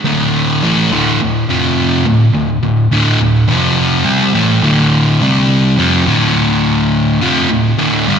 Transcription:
0.05 0.62 D2 medium
0.05 0.62 A2 loud
0.05 0.62 D3 loud
0.63 0.91 A2 medium
0.63 0.91 E3 loud
0.63 0.91 A3 loud
0.91 1.19 D2 medium
0.91 1.20 A2 medium
0.91 1.20 D3 medium
1.21 1.43 D2 medium
1.21 1.44 A2 medium
1.49 2.05 F2 medium
1.49 2.05 C3 medium
1.49 2.06 F3 medium
2.06 2.29 D2 medium
2.06 2.29 A2 medium
2.35 2.57 D2 medium
2.35 2.57 A2 medium
2.63 2.86 D2 medium
2.63 2.86 A2 medium
2.91 3.19 D2 loud
2.91 3.20 A2 medium
2.91 3.20 D3 loud
3.21 3.44 D2 medium
3.21 3.44 A2 medium
3.48 4.05 F2 loud
3.48 4.04 C3 loud
3.48 4.05 F3 loud
4.05 4.33 C3 medium
4.05 4.33 G3 medium
4.05 4.34 C4 medium
4.34 4.62 A2 medium
4.34 4.63 E3 medium
4.34 4.63 A3 medium
4.62 5.19 D2 loud
4.62 5.20 A2 medium
4.62 5.20 D3 medium
5.21 5.77 C3 medium
5.21 5.77 G3 medium
5.21 5.78 C4 loud
5.78 6.06 F2 medium
5.78 6.06 C3 loud
5.78 6.06 F3 loud
6.06 7.20 D2 medium
6.06 7.20 A2 medium
6.06 7.21 D3 medium
7.21 7.49 F2 medium
7.21 7.49 C3 medium
7.21 7.49 F3 medium
7.49 7.73 D2 medium
7.49 7.73 A2 medium
7.78 8.06 D2 medium
7.78 8.06 A2 medium
7.78 8.06 D3 medium
8.08 8.19 G2 loud
8.08 8.19 D3 medium
8.08 8.19 G3 loud

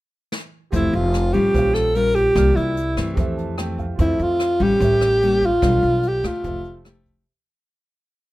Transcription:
0.32 snare soft
0.71 0.92 F1 medium
0.71 1.52 F3 soft
0.71 1.13 A3 medium
0.71 1.13 C4 soft
0.71 1.13 E4 soft
0.71 1.50 G4 soft
0.71 1.52 A4 soft
0.71 1.53 C5 soft
0.71 kick medium
0.71 closed hi-hat soft
0.75 0.97 E4 medium
0.75 1.55 E5 medium
0.93 1.31 F1 medium
0.93 1.35 F4 medium
0.93 closed hi-hat soft
1.14 cross-stick medium
1.14 closed hi-hat soft
1.33 1.53 A1 medium
1.33 1.92 G3 medium
1.33 1.92 C#4 medium
1.33 1.92 F4 medium
1.33 1.76 G4 medium
1.33 kick soft
1.33 closed hi-hat soft
1.52 2.32 A#1 medium
1.52 2.34 A#2 medium
1.52 2.30 G4 soft
1.52 2.34 C5 soft
1.52 kick medium
1.52 closed hi-hat soft
1.56 2.35 C#5 soft
1.56 2.37 F5 medium
1.74 1.97 A4 medium
1.74 cross-stick soft
1.74 closed hi-hat soft
1.95 2.33 G3 soft
1.95 2.33 C#4 soft
1.95 2.33 F4 medium
1.95 2.16 A#4 medium
1.95 closed hi-hat soft
2.15 2.57 G4 medium
2.15 kick soft
2.15 closed hi-hat soft
2.32 2.55 C2 loud
2.32 3.15 C3 soft
2.32 2.76 G3 soft
2.32 2.76 A#3 medium
2.32 3.12 G4 soft
2.32 3.15 A#4 soft
2.32 3.16 D5 soft
2.32 kick medium
2.36 2.77 F4 medium
2.36 3.17 F6 medium
2.36 cross-stick medium
2.36 closed hi-hat soft
2.56 2.95 C2 medium
2.56 3.17 E4 medium
2.56 closed hi-hat soft
2.77 closed hi-hat soft
2.97 3.16 G2 medium
2.97 3.55 E3 medium
2.97 3.55 A3 medium
2.97 3.56 C4 medium
2.97 kick soft
2.97 cross-stick medium
2.97 closed hi-hat soft
3.14 3.97 F2 soft
3.14 3.95 F2 medium
3.14 3.96 G4 medium
3.14 3.97 A4 medium
3.14 3.98 C5 soft
3.14 kick medium
3.14 closed hi-hat soft
3.20 3.99 E5 medium
3.37 3.57 A5 soft
3.37 closed hi-hat soft
3.58 3.85 E3 medium
3.58 3.85 A3 soft
3.58 3.85 C4 medium
3.58 3.77 G5 medium
3.58 cross-stick medium
3.58 closed hi-hat soft
3.78 3.98 F5 soft
3.78 kick soft
3.78 closed hi-hat soft
3.95 4.18 F2 medium
3.95 4.79 F2 medium
3.95 4.78 F4 medium
3.95 4.79 A4 soft
3.95 kick medium
3.95 closed hi-hat soft
4.00 4.58 A3 medium
4.00 4.58 C4 medium
4.00 4.24 E4 medium
4.00 4.80 C5 soft
4.00 4.81 E5 medium
4.19 4.58 F2 medium
4.19 4.64 F4 medium
4.19 closed hi-hat soft
4.40 cross-stick medium
4.40 closed hi-hat soft
4.60 4.79 A1 medium
4.60 5.19 G3 medium
4.60 5.19 C#4 medium
4.60 5.47 G4 loud
4.60 kick soft
4.60 closed hi-hat soft
4.78 5.59 A1 medium
4.78 5.61 A2 medium
4.78 5.60 G4 soft
4.78 5.61 A#4 soft
4.78 kick medium
4.78 closed hi-hat soft
4.82 5.62 C#5 soft
4.82 5.63 E5 medium
5.01 cross-stick soft
5.01 closed hi-hat soft
5.22 5.49 G3 soft
5.22 5.49 A#3 soft
5.22 5.49 C#4 soft
5.22 closed hi-hat soft
5.42 6.10 F4 loud
5.42 kick soft
5.42 closed hi-hat soft
5.58 6.43 B2 medium
5.58 6.41 F4 soft
5.58 6.42 A4 soft
5.58 6.43 B4 soft
5.58 kick medium
5.62 5.82 B1 medium
5.62 6.04 G3 soft
5.62 6.04 D4 soft
5.62 6.04 F4 medium
5.62 6.44 D5 medium
5.62 cross-stick medium
5.62 closed hi-hat soft
5.83 6.21 B1 medium
5.83 closed hi-hat soft
6.03 closed hi-hat soft
6.08 6.28 G4 medium
6.24 6.43 D2 medium
6.24 6.82 A3 medium
6.24 6.87 F4 medium
6.24 6.83 G4 medium
6.24 kick soft
6.24 cross-stick medium
6.24 closed hi-hat soft
6.41 7.23 F1 medium
6.41 7.24 G4 soft
6.41 7.25 A4 soft
6.41 7.26 C5 soft
6.41 kick soft
6.41 closed hi-hat soft
6.46 7.26 F3 medium
6.46 7.27 E5 soft
6.64 closed hi-hat soft
6.85 7.24 A3 soft
6.85 7.24 E4 soft
6.85 7.24 G4 soft
6.85 cross-stick medium
6.85 closed hi-hat soft
7.06 kick soft
7.06 closed hi-hat soft

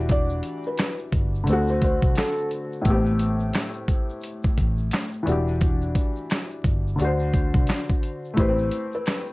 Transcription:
0.00 0.40 E1 loud
0.00 1.42 E3 medium
0.00 1.44 D4 medium
0.00 1.45 F#4 medium
0.00 1.46 G4 medium
0.09 0.63 D5 loud
0.09 kick loud
0.09 closed hi-hat medium
0.09 shaker medium
0.30 shaker medium
0.43 closed hi-hat medium
0.43 shaker soft
0.63 0.97 B4 medium
0.63 shaker soft
0.78 snare loud
0.78 clap medium
0.78 closed hi-hat medium
0.78 shaker medium
0.98 shaker medium
1.12 1.44 G1 medium
1.12 kick loud
1.12 closed hi-hat medium
1.35 shaker soft
1.44 2.81 D3 medium
1.44 2.82 A3 medium
1.44 closed hi-hat medium
1.44 shaker medium
1.48 1.99 D2 medium
1.48 2.84 C4 medium
1.48 1.68 A4 medium
1.53 2.85 F#4 medium
1.68 1.81 C5 medium
1.68 shaker soft
1.82 2.14 C5 medium
1.82 kick medium
1.82 closed hi-hat medium
2.02 2.15 C2 medium
2.02 kick medium
2.02 shaker soft
2.15 2.48 A4 medium
2.15 snare loud
2.15 clap medium
2.15 closed hi-hat medium
2.15 shaker medium
2.38 shaker soft
2.51 closed hi-hat soft
2.51 shaker soft
2.73 shaker soft
2.81 5.21 A2 medium
2.81 5.22 A3 medium
2.81 kick loud
2.81 closed hi-hat medium
2.81 shaker medium
2.86 3.51 A1 loud
2.86 2.94 B3 medium
2.90 5.27 C4 medium
2.90 5.25 G4 medium
3.06 shaker medium
3.19 closed hi-hat medium
3.19 shaker soft
3.40 shaker soft
3.53 snare loud
3.53 clap medium
3.53 closed hi-hat medium
3.53 shaker medium
3.74 shaker soft
3.88 kick loud
3.88 closed hi-hat medium
4.10 shaker soft
4.21 closed hi-hat medium
4.21 shaker medium
4.43 kick loud
4.43 shaker soft
4.58 4.89 A1 loud
4.58 kick medium
4.58 closed hi-hat medium
4.78 shaker soft
4.91 snare loud
4.91 clap medium
4.91 closed hi-hat medium
4.91 shaker medium
5.13 shaker soft
5.23 6.94 E3 medium
5.23 6.95 D4 medium
5.23 shaker soft
5.27 5.92 E1 loud
5.27 6.97 F#4 medium
5.27 closed hi-hat medium
5.32 6.98 G4 medium
5.48 shaker soft
5.61 kick loud
5.61 closed hi-hat medium
5.61 shaker medium
5.82 shaker soft
5.95 kick medium
5.95 closed hi-hat medium
5.95 shaker medium
6.16 shaker soft
6.30 snare loud
6.30 clap medium
6.30 closed hi-hat medium
6.30 shaker medium
6.51 shaker medium
6.64 6.96 G1 medium
6.64 kick loud
6.64 closed hi-hat medium
6.64 shaker medium
6.88 shaker soft
6.96 7.51 D2 medium
6.96 8.33 D3 medium
6.96 8.34 D4 medium
6.96 closed hi-hat medium
6.96 shaker medium
7.02 8.36 F#4 medium
7.02 8.37 C5 medium
7.20 shaker soft
7.33 kick medium
7.33 closed hi-hat medium
7.33 shaker medium
7.54 7.67 C2 medium
7.54 kick loud
7.54 shaker soft
7.67 snare loud
7.67 clap medium
7.67 closed hi-hat medium
7.67 shaker medium
7.90 kick medium
7.90 shaker medium
8.03 closed hi-hat medium
8.03 shaker soft
8.25 shaker soft
8.34 9.33 A3 medium
8.34 9.33 E4 medium
8.34 kick loud
8.34 closed hi-hat medium
8.38 8.69 A1 loud
8.38 9.33 G4 medium
8.38 8.91 C5 medium
8.38 shaker medium
8.42 8.48 B4 medium
8.49 9.33 C4 medium
8.58 shaker soft
8.71 closed hi-hat medium
8.93 9.25 B4 medium
8.93 shaker soft
9.06 snare loud
9.06 clap medium
9.06 closed hi-hat medium
9.06 shaker medium
9.27 shaker medium

